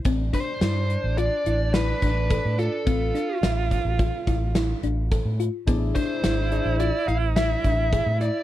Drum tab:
HH |xxxxxxxxxx|xxxxxxxxxx|xxxxxxxxxx|
SD |--o---o---|-oo---o---|--o---o---|
BD |oo-----oo-|o--ooo--o-|oo-----oo-|